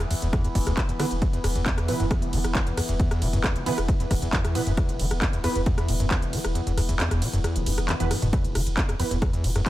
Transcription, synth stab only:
1.00 1.17 E3 medium
1.00 1.17 B3 medium
1.00 1.17 B4 medium
1.88 2.06 E3 medium
1.88 2.06 B3 medium
1.88 2.06 B4 medium
3.66 3.78 E3 medium
3.66 3.78 B3 medium
3.66 3.78 B4 loud
4.55 4.73 E3 medium
4.55 4.73 B3 medium
4.55 4.73 B4 medium
5.44 5.62 E3 medium
5.44 5.62 B3 medium
5.44 5.62 B4 medium
8.00 8.11 E3 medium
8.00 8.11 B3 medium
8.00 8.11 B4 loud
9.00 9.17 E3 medium
9.00 9.17 B3 medium
9.00 9.17 B4 medium

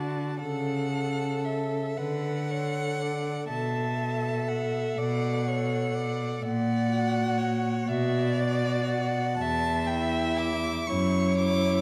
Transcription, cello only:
0.00 0.25 D3 medium
0.42 1.80 C#3 medium
1.98 3.31 D3 medium
3.49 4.80 B2 medium
4.98 6.26 B2 medium
6.42 7.70 A#2 medium
7.88 9.22 B2 medium
9.39 10.71 E2 medium
10.89 11.81 F#2 loud

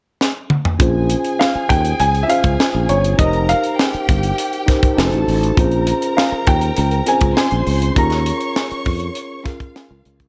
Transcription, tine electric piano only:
0.79 1.62 C#4 medium
0.79 1.62 F4 medium
0.79 1.63 G#4 medium
0.79 1.63 C5 medium
2.28 2.90 C#4 medium
2.28 2.91 F4 medium
2.28 2.91 G#4 medium
2.28 2.92 C5 medium
3.17 4.00 D#4 medium
3.17 4.01 G4 medium
3.17 4.01 A#4 medium
3.17 4.02 C5 medium
4.67 4.95 D#4 medium
4.67 4.98 G4 medium
4.67 4.98 A#4 medium
4.67 4.99 C5 medium
4.96 5.45 D#4 medium
4.96 5.45 F#4 medium
4.96 5.46 A4 medium
4.96 5.05 B4 medium
5.06 5.50 C5 medium
5.57 5.64 C4 medium
5.57 6.40 F4 medium
5.57 6.40 G#4 medium
5.57 6.41 C5 medium
5.63 6.43 C#4 medium
7.06 7.13 C4 medium
7.06 7.68 F4 medium
7.06 7.69 G#4 medium
7.06 7.70 C5 medium
7.12 7.71 C#4 medium
7.94 8.77 C#4 medium
7.94 8.78 F4 medium
7.94 8.79 G#4 medium
7.94 8.79 A#4 medium
9.44 10.06 C#4 medium
9.44 10.07 F4 medium
9.44 10.07 G#4 medium
9.44 10.08 A#4 medium

